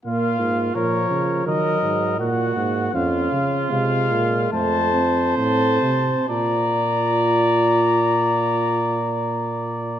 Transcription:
X:1
M:4/4
L:1/8
Q:1/4=72
K:Fphr
V:1 name="Trumpet"
f2 d2 e2 g2 | f2 f2 =a2 a2 | b8 |]
V:2 name="Trumpet"
F2 B2 B2 G2 | F4 c4 | =d8 |]
V:3 name="Euphonium"
B,2 F,2 G,2 B,2 | D2 A,2 =A, C3 | F8 |]
V:4 name="Tuba" clef=bass
B,, A,, B,, D, E, A,, B,, A,, | F,, D, C, B,, F,,2 =A,, C, | B,,8 |]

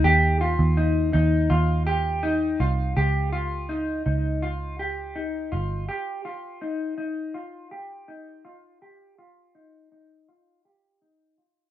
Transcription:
X:1
M:4/4
L:1/16
Q:1/4=82
K:Ebmix
V:1 name="Clean electric guitar"
G2 F2 E2 E2 F2 G2 E2 F2 | G2 F2 E2 E2 F2 G2 E2 F2 | G2 F2 E2 E2 F2 G2 E2 F2 | G2 F2 E2 E2 F2 G2 E2 F2 |]
V:2 name="Picked electric bass" clef=bass
E,,3 E,,3 E,,2 E,,6 C,,2 | D,,6 D,,8 G,,,2 | z16 | z16 |]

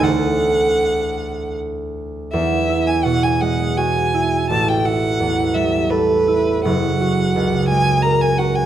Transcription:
X:1
M:3/4
L:1/16
Q:1/4=83
K:E
V:1 name="Violin"
f8 z4 | e3 g f g f2 g4 | a =g f4 e2 B4 | f6 g2 ^a g f g |]
V:2 name="Harp"
[=D,,A,EA=c]12 | E,,2 E2 B,,2 G,2 F2 E2 | A,,,2 E2 E,,2 =G,2 A2 E2 | F,,,2 F2 C,,2 G,2 ^A2 F2 |]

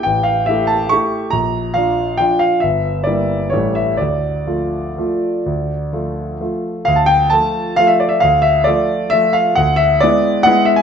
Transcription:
X:1
M:3/4
L:1/16
Q:1/4=134
K:Dm
V:1 name="Grand piano"
g2 f2 e2 a2 ^c'4 | b4 f4 g2 f2 | e4 d4 ^c2 e2 | d12- |
d8- d2 z2 | f a g2 a4 f e d e | f2 e2 d4 e2 f2 | ^f2 e2 d4 f2 e ^g |]
V:2 name="Grand piano"
A,,,4 [A,EG]4 [A,EG]4 | B,,,4 [F,DF]4 [F,DF]4 | G,,,4 [G,B,E]4 [A,,,G,A,E]4 | D,,4 [F,A,F]4 [F,A,F]4 |
D,,4 [F,A,F]4 [F,A,F]4 | D,,4 [F,A,F]4 [F,A,F]4 | D,,4 [F,A,F]4 [F,A,F]4 | D,,4 [^G,=B,E]4 [G,B,E]4 |]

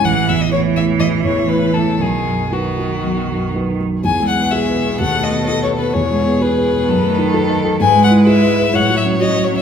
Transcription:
X:1
M:4/4
L:1/16
Q:1/4=126
K:E
V:1 name="Violin"
f2 e d c2 e2 d2 c2 B2 A2 | G4 F8 z4 | g2 f2 e4 f2 d2 (3d2 c2 B2 | c4 B8- B2 z2 |
g2 f2 e4 f2 e2 d2 c e |]
V:2 name="Violin"
z16 | z16 | G8 A8 | G8 A8 |
B8 c8 |]
V:3 name="Grand piano"
A,,,2 E,,2 [A,Ec]2 A,2 A,,,2 E,,2 [A,Ec]2 A,2 | B,,,2 F,,2 [F,DB]2 F,2 B,,,2 F,,2 [F,DB]2 F,2 | (3E,,2 G,2 B,2 (3G2 B2 B,2 (3D,,2 A,2 B,2 (3A2 B2 B,2 | (3E,,2 G,2 B,2 (3G2 B2 B,2 (3F,,2 A,2 D2 (3A2 d2 A2 |
(3G,,2 G,2 E2 (3G2 e2 B2 (3A,,2 F,2 C2 (3F2 c2 C2 |]
V:4 name="Cello" clef=bass
E,4 E,12 | D,4 D,8- D,2 z2 | B,,16- | B,,8 D,8 |
G,8 F,8 |]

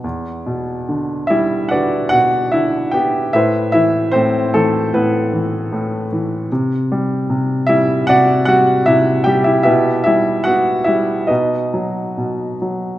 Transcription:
X:1
M:4/4
L:1/16
Q:1/4=75
K:Em
V:1 name="Grand piano"
z6 [Ee]2 [FBdf]2 [Ff]2 [Ee]2 [Gg]2 | [EBce]2 [Ee]2 [Cc]2 [A,A]2 [B,EB]6 z2 | z6 [Ee]2 [Fdf]2 [Ff]2 [Ee]2 [Gg] [Ee] | [EGBe]2 [Ee]2 [Ff]2 [Ee]2 [^DFB^d]6 z2 |]
V:2 name="Grand piano" clef=bass
E,,2 B,,2 D,2 G,2 D,2 B,,2 D,2 B,2 | A,,2 E,2 A,,2 E,2 A,,2 E,2 A,,2 E,2 | C,2 G,2 C,2 G,2 C,2 G,2 C,2 G,2 | B,,2 G,2 B,2 G,2 B,,2 F,2 B,,2 F,2 |]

